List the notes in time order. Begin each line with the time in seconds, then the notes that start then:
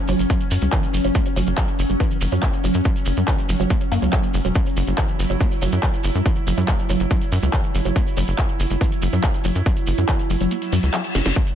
Already playing: F#3 C#4
0.08 F#1 F#3, open hi-hat, shekere
0.19 F#1, closed hi-hat, shekere
0.30 F#3, kick, closed hi-hat, shekere
0.41 closed hi-hat, shekere
0.51 F#2, open hi-hat, shekere
0.62 C#2 G3, closed hi-hat, shekere
0.72 E3, kick, clap, closed hi-hat, shekere
0.83 closed hi-hat, shekere
0.94 F#1 F#3, open hi-hat, shekere
1.04 F#1 F#3, closed hi-hat, shekere
1.15 A#3, kick, closed hi-hat, shekere
1.26 closed hi-hat, shekere
1.36 F#1 F#3, open hi-hat, shekere
1.47 F#1, closed hi-hat, shekere
1.58 F#3, kick, clap, closed hi-hat, shekere
1.68 closed hi-hat, shekere
1.79 F#1, open hi-hat, shekere
1.89 F#1 G3, closed hi-hat, shekere
2.00 E3, kick, closed hi-hat, shekere
2.11 closed hi-hat, shekere
2.21 F#1 F#3, open hi-hat, shekere
2.32 F#2 F#3, closed hi-hat, shekere
2.43 A#3, kick, clap, closed hi-hat, shekere
2.53 closed hi-hat, shekere
2.64 F#1 F#3, open hi-hat, shekere
2.74 F#2, closed hi-hat, shekere
2.85 F#3, kick, closed hi-hat, shekere
2.96 closed hi-hat, shekere
3.05 F#1, open hi-hat, shekere
3.17 F#2 G3, closed hi-hat, shekere
3.28 E3, kick, clap, closed hi-hat, shekere
3.39 closed hi-hat, shekere
3.49 F#1 F#3, open hi-hat, shekere
3.60 F#1 F#3, closed hi-hat, shekere
3.70 kick, closed hi-hat, shekere
3.81 closed hi-hat, shekere
3.92 F#2 A#3, open hi-hat, shekere
4.02 C#2 F#3, closed hi-hat, shekere
4.12 F#3, kick, clap, closed hi-hat, shekere
4.23 closed hi-hat, shekere
4.34 F#1 G3, open hi-hat, shekere
4.45 E1 F#3, closed hi-hat, shekere
4.55 F#3 E4, kick, closed hi-hat, shekere
4.66 closed hi-hat, shekere
4.77 F#1, open hi-hat, shekere
4.87 F#1 G3, closed hi-hat, shekere
4.97 E3, kick, clap, closed hi-hat, shekere
5.08 closed hi-hat, shekere
5.19 F#1 F#3, open hi-hat, shekere
5.30 F#1 F#3, closed hi-hat, shekere
5.41 A#3, kick, closed hi-hat, shekere
5.51 closed hi-hat, shekere
5.62 F#1 F#3, open hi-hat, shekere
5.72 F#2, closed hi-hat, shekere
5.83 F#3, kick, clap, closed hi-hat, shekere
5.94 closed hi-hat, shekere
6.04 F#1, open hi-hat, shekere
6.15 F#2 G3, closed hi-hat, shekere
6.26 E3, kick, closed hi-hat, shekere
6.36 closed hi-hat, shekere
6.47 F#1 F#3, open hi-hat, shekere
6.58 F#2 F#3, closed hi-hat, shekere
6.68 kick, clap, closed hi-hat, shekere
6.79 closed hi-hat, shekere
6.89 F#1 F#3, open hi-hat, shekere
7.00 F#1, closed hi-hat, shekere
7.11 F#3, kick, closed hi-hat, shekere
7.21 closed hi-hat, shekere
7.32 F#2, open hi-hat, shekere
7.43 C#2 G3, closed hi-hat, shekere
7.53 E3, kick, clap, closed hi-hat, shekere
7.64 closed hi-hat, shekere
7.75 F#1 F#3, open hi-hat, shekere
7.85 F#1 F#3, closed hi-hat, shekere
7.96 A#3, kick, closed hi-hat, shekere
8.07 closed hi-hat, shekere
8.17 F#1 F#3, open hi-hat, shekere
8.28 F#1, closed hi-hat, shekere
8.38 F#3, kick, clap, closed hi-hat, shekere
8.49 closed hi-hat, shekere
8.60 F#1, open hi-hat, shekere
8.70 F#1 G3, closed hi-hat, shekere
8.81 E3, kick, closed hi-hat, shekere
8.92 closed hi-hat, shekere
9.02 F#1 F#3, open hi-hat, shekere
9.13 F#2 F#3, closed hi-hat, shekere
9.23 kick, clap, closed hi-hat, shekere
9.34 closed hi-hat, shekere
9.44 F#1 F#3, open hi-hat, shekere
9.55 F#2, closed hi-hat, shekere
9.66 F#3, kick, closed hi-hat, shekere
9.76 closed hi-hat, shekere
9.87 F#1, open hi-hat, shekere
9.98 F#2 G3, closed hi-hat, shekere
10.08 E3, kick, clap, closed hi-hat, shekere
10.19 closed hi-hat, shekere
10.30 F#1 F#3, open hi-hat, shekere
10.41 F#1 F#3, closed hi-hat, shekere
10.51 A#3, closed hi-hat, reverse cymbal, shekere
10.62 closed hi-hat, shekere
10.72 F#2 F#3, open hi-hat, shekere
10.83 C#2, closed hi-hat, shekere
10.94 F#3, clap, closed hi-hat, shekere
11.04 closed hi-hat, shekere
11.15 F#1, snare, open hi-hat, shekere
11.26 F#1 G3, snare, closed hi-hat, shekere
11.36 F#3 C#4, kick, closed hi-hat, shekere
11.47 closed hi-hat, shekere